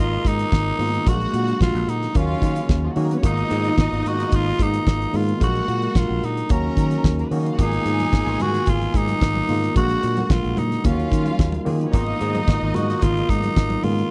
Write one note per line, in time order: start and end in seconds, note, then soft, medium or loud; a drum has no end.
0.00 0.16 G#1 loud
0.00 1.04 B2 medium
0.00 0.79 D#3 medium
0.00 0.80 G#3 medium
0.00 2.12 G#3 medium
0.00 0.80 A#3 medium
0.00 0.80 B3 medium
0.00 0.75 D#4 loud
0.00 0.29 F4 loud
0.00 0.81 F4 loud
0.00 1.04 F4 medium
0.00 1.04 A#4 medium
0.00 0.75 D#5 loud
0.25 0.43 G#2 medium
0.25 1.10 D#4 loud
0.25 kick loud
0.25 closed hi-hat medium
0.39 closed hi-hat medium
0.52 0.71 G#1 medium
0.52 kick loud
0.52 snare loud
0.79 0.97 G#2 loud
0.79 1.03 D#3 medium
0.79 1.04 G#3 medium
0.79 1.04 A#3 medium
0.79 1.04 B3 medium
0.79 1.04 F4 medium
0.79 open hi-hat medium
0.94 closed hi-hat medium
1.06 1.25 A#1 loud
1.06 2.14 D3 medium
1.06 2.04 F#3 medium
1.06 2.04 G#3 medium
1.06 3.21 A#3 medium
1.06 2.04 A#3 medium
1.06 2.04 D4 medium
1.06 2.14 F#4 medium
1.06 1.86 F#4 loud
1.06 2.04 F#4 medium
1.06 1.61 F#4 loud
1.06 1.87 F#5 loud
1.06 kick loud
1.06 closed hi-hat medium
1.21 closed hi-hat soft
1.33 1.52 A#2 loud
1.33 closed hi-hat medium
1.48 closed hi-hat soft
1.61 1.70 A#1 loud
1.61 1.91 F4 loud
1.61 kick loud
1.61 snare loud
1.75 1.84 A#1 loud
1.75 closed hi-hat soft
1.88 2.06 A#2 medium
1.88 2.18 D#4 medium
1.88 closed hi-hat medium
2.03 snare soft
2.03 closed hi-hat soft
2.14 2.34 D#2 medium
2.14 3.22 C#3 medium
2.14 2.88 D#3 medium
2.14 3.22 F#3 medium
2.14 2.88 F#3 medium
2.14 2.88 A#3 medium
2.14 2.88 C#4 medium
2.14 2.97 C#4 loud
2.14 3.22 D#4 medium
2.14 2.77 F4 medium
2.14 2.22 F4 medium
2.14 2.77 F5 loud
2.14 kick loud
2.14 closed hi-hat medium
2.23 2.92 F#4 medium
2.42 2.60 D#3 medium
2.42 kick medium
2.42 closed hi-hat medium
2.56 closed hi-hat medium
2.69 2.88 D#2 loud
2.69 kick loud
2.69 snare loud
2.84 2.90 F3 medium
2.84 2.90 F4 medium
2.91 2.97 F#3 medium
2.91 2.97 F#4 medium
2.96 3.20 D#3 medium
2.96 3.15 D#3 loud
2.96 3.20 F#3 medium
2.96 3.04 G#3 medium
2.96 3.21 A#3 medium
2.96 3.21 C#4 medium
2.96 3.21 F#4 loud
2.96 3.04 G#4 medium
2.96 open hi-hat medium
3.05 3.11 A#3 medium
3.05 3.11 A#4 medium
3.11 3.18 B3 medium
3.11 3.18 B4 medium
3.11 closed hi-hat medium
3.18 3.24 C#4 medium
3.18 3.24 C#5 loud
3.23 3.42 G#1 loud
3.23 5.39 B2 medium
3.23 4.21 D#3 medium
3.23 4.21 G#3 medium
3.23 6.46 G#3 medium
3.23 4.21 A#3 medium
3.23 4.21 B3 medium
3.23 5.11 D#4 loud
3.23 4.09 D#4 loud
3.23 5.39 F4 medium
3.23 4.21 F4 medium
3.23 7.54 A#4 medium
3.23 5.10 D#5 loud
3.23 kick loud
3.23 closed hi-hat loud
3.37 closed hi-hat soft
3.50 3.69 G#2 loud
3.50 closed hi-hat medium
3.64 closed hi-hat soft
3.78 3.88 G#1 loud
3.78 kick loud
3.78 snare loud
3.93 4.01 G#1 loud
3.93 closed hi-hat soft
4.05 4.24 G#2 medium
4.05 4.37 F#4 loud
4.05 closed hi-hat medium
4.20 closed hi-hat medium
4.32 4.51 G#1 loud
4.32 4.64 F4 loud
4.32 kick loud
4.32 closed hi-hat medium
4.59 4.78 G#2 loud
4.59 5.17 D#4 loud
4.59 kick loud
4.59 closed hi-hat medium
4.74 closed hi-hat medium
4.87 5.05 G#1 medium
4.87 kick loud
4.87 snare loud
5.02 closed hi-hat soft
5.13 5.32 G#2 loud
5.13 5.38 D#3 medium
5.13 5.38 G#3 medium
5.13 5.38 A#3 medium
5.13 5.39 B3 medium
5.13 5.39 F4 medium
5.13 5.42 F4 medium
5.13 open hi-hat medium
5.29 closed hi-hat medium
5.40 5.60 A#1 loud
5.40 6.49 D3 medium
5.40 6.38 F#3 medium
5.40 6.38 G#3 medium
5.40 6.39 A#3 medium
5.40 6.39 D4 medium
5.40 5.48 F4 medium
5.40 6.49 F#4 medium
5.40 6.21 F#4 loud
5.40 5.99 F#4 loud
5.40 6.21 F#5 loud
5.40 kick loud
5.40 closed hi-hat medium
5.48 6.42 F#4 medium
5.55 closed hi-hat soft
5.68 5.87 A#2 loud
5.68 closed hi-hat medium
5.82 closed hi-hat soft
5.95 6.05 A#1 loud
5.95 6.26 F4 loud
5.95 kick loud
5.95 snare loud
6.10 6.19 A#1 loud
6.23 6.41 A#2 medium
6.23 6.53 D#4 medium
6.23 closed hi-hat medium
6.37 closed hi-hat soft
6.49 6.69 D#2 loud
6.49 7.57 C#3 medium
6.49 7.23 D#3 medium
6.49 7.57 F#3 medium
6.49 7.23 F#3 medium
6.49 7.23 A#3 medium
6.49 7.23 C#4 medium
6.49 7.32 C#4 medium
6.49 7.57 D#4 medium
6.49 7.24 F#4 medium
6.49 7.11 A#4 medium
6.49 7.12 A#5 loud
6.49 kick loud
6.49 closed hi-hat medium
6.77 6.95 D#3 medium
6.77 kick loud
6.77 closed hi-hat medium
6.91 closed hi-hat soft
7.04 7.23 D#2 medium
7.04 kick loud
7.04 snare loud
7.19 7.25 A#3 medium
7.19 7.26 A#4 medium
7.19 closed hi-hat soft
7.26 7.32 B3 medium
7.26 7.32 B4 medium
7.31 7.55 D#3 loud
7.31 7.50 D#3 medium
7.31 7.55 F#3 medium
7.31 7.56 A#3 medium
7.31 7.56 C#4 medium
7.31 7.39 C#4 medium
7.31 7.56 F#4 loud
7.31 7.39 C#5 medium
7.31 open hi-hat medium
7.40 7.47 D#4 medium
7.40 7.46 D#5 medium
7.46 7.53 F4 medium
7.46 7.53 F5 medium
7.46 closed hi-hat medium
7.54 7.59 F#4 medium
7.54 7.59 F#5 medium
7.58 7.77 G#1 loud
7.58 9.73 B2 medium
7.58 8.56 D#3 medium
7.58 9.73 G#3 medium
7.58 8.56 G#3 medium
7.58 8.56 A#3 medium
7.58 8.56 B3 medium
7.58 8.43 D#4 loud
7.58 9.73 F4 medium
7.58 8.57 F4 medium
7.58 9.45 G#4 loud
7.58 10.81 A#4 medium
7.58 9.46 G#5 loud
7.58 kick loud
7.58 closed hi-hat medium
7.72 closed hi-hat soft
7.72 muted conga soft
7.85 8.04 G#2 loud
7.85 closed hi-hat medium
7.99 closed hi-hat soft
7.99 high conga medium
8.13 8.22 G#1 loud
8.13 kick loud
8.13 snare loud
8.27 8.36 G#1 loud
8.27 closed hi-hat soft
8.27 muted conga soft
8.40 8.58 G#2 medium
8.40 8.71 F#4 loud
8.40 closed hi-hat medium
8.40 high conga loud
8.40 low conga medium
8.54 snare soft
8.54 closed hi-hat medium
8.66 8.86 G#1 loud
8.66 8.98 F4 loud
8.66 kick loud
8.66 closed hi-hat medium
8.66 muted conga soft
8.66 low conga medium
8.81 closed hi-hat soft
8.81 muted conga soft
8.94 9.13 G#2 loud
8.94 9.76 D#4 loud
8.94 kick loud
8.94 closed hi-hat medium
9.08 closed hi-hat soft
9.08 high conga medium
9.21 9.40 G#1 medium
9.21 kick loud
9.21 snare loud
9.21 muted conga soft
9.35 high conga medium
9.48 9.67 G#2 medium
9.48 9.73 D#3 medium
9.48 9.73 G#3 medium
9.48 9.73 A#3 medium
9.48 9.73 B3 medium
9.48 9.74 F4 medium
9.48 open hi-hat medium
9.48 low conga medium
9.64 closed hi-hat medium
9.75 9.94 A#1 loud
9.75 10.83 D3 medium
9.75 10.73 F#3 medium
9.75 10.83 G#3 medium
9.75 10.73 G#3 medium
9.75 10.74 A#3 medium
9.75 10.74 D4 medium
9.75 10.83 F#4 medium
9.75 10.56 F#4 medium
9.75 10.74 F#4 medium
9.75 10.33 F#4 loud
9.75 10.56 F#5 loud
9.75 kick loud
9.75 closed hi-hat medium
9.75 muted conga soft
9.89 closed hi-hat soft
9.89 muted conga soft
10.03 10.22 A#2 loud
10.03 closed hi-hat medium
10.17 closed hi-hat soft
10.17 high conga medium
10.30 10.40 A#1 loud
10.30 10.60 F4 loud
10.30 kick loud
10.30 snare loud
10.44 10.53 A#1 loud
10.44 closed hi-hat soft
10.44 muted conga soft
10.57 10.76 A#2 medium
10.57 10.87 D#4 loud
10.57 closed hi-hat medium
10.57 high conga medium
10.57 low conga loud
10.72 snare soft
10.72 closed hi-hat soft
10.84 11.03 D#2 loud
10.84 11.92 C#3 medium
10.84 11.57 D#3 medium
10.84 11.57 F#3 medium
10.84 11.92 F#3 medium
10.84 11.58 A#3 medium
10.84 11.58 C#4 medium
10.84 11.66 C#4 medium
10.84 11.92 D#4 medium
10.84 11.60 F4 loud
10.84 10.92 F4 medium
10.84 14.11 A#4 medium
10.84 11.60 F5 loud
10.84 kick loud
10.84 closed hi-hat medium
10.84 low conga medium
10.92 11.61 F#4 medium
10.99 closed hi-hat soft
11.12 11.30 D#3 medium
11.12 kick loud
11.12 closed hi-hat medium
11.26 closed hi-hat soft
11.26 high conga medium
11.39 11.57 D#2 medium
11.39 kick loud
11.39 snare loud
11.52 closed hi-hat soft
11.52 muted conga soft
11.52 high conga medium
11.65 11.90 D#3 loud
11.65 11.85 D#3 loud
11.65 11.90 F#3 medium
11.65 11.74 G#3 medium
11.65 11.90 A#3 medium
11.65 11.91 C#4 medium
11.65 11.91 F4 loud
11.65 11.74 G#4 medium
11.65 open hi-hat medium
11.65 low conga medium
11.74 11.81 A#3 medium
11.74 11.81 A#4 medium
11.81 11.87 B3 medium
11.81 11.87 B4 medium
11.81 closed hi-hat medium
11.87 11.93 C#4 medium
11.87 11.93 C#5 loud
11.93 12.12 G#1 loud
11.93 14.08 B2 medium
11.93 12.91 D#3 medium
11.93 12.91 G#3 medium
11.93 14.11 G#3 medium
11.93 12.91 A#3 medium
11.93 12.91 B3 medium
11.93 13.80 D#4 loud
11.93 12.76 D#4 loud
11.93 14.09 F4 medium
11.93 12.92 F4 medium
11.93 13.80 D#5 loud
11.93 kick loud
11.93 closed hi-hat medium
11.93 muted conga soft
12.06 muted conga soft
12.21 12.39 G#2 loud
12.21 closed hi-hat medium
12.35 closed hi-hat soft
12.35 high conga medium
12.48 12.57 G#1 loud
12.48 kick loud
12.48 snare loud
12.61 12.71 G#1 loud
12.61 muted conga soft
12.74 12.94 G#2 medium
12.74 13.04 F#4 medium
12.74 closed hi-hat medium
12.74 high conga medium
12.74 low conga medium
12.90 snare soft
12.90 closed hi-hat soft
13.02 13.21 G#1 loud
13.02 13.31 F4 medium
13.02 kick loud
13.02 closed hi-hat medium
13.02 muted conga soft
13.02 low conga medium
13.17 closed hi-hat soft
13.29 13.48 G#2 medium
13.29 13.85 D#4 loud
13.29 kick loud
13.29 closed hi-hat medium
13.43 closed hi-hat soft
13.43 high conga medium
13.56 13.75 G#1 medium
13.56 kick loud
13.56 snare loud
13.70 closed hi-hat soft
13.70 muted conga soft
13.70 high conga medium
13.83 14.02 G#2 loud
13.83 14.08 D#3 medium
13.83 14.08 G#3 medium
13.83 14.08 A#3 medium
13.83 14.08 B3 medium
13.83 14.08 C#4 medium
13.83 14.11 F4 medium
13.83 open hi-hat medium
13.83 low conga medium
13.99 closed hi-hat medium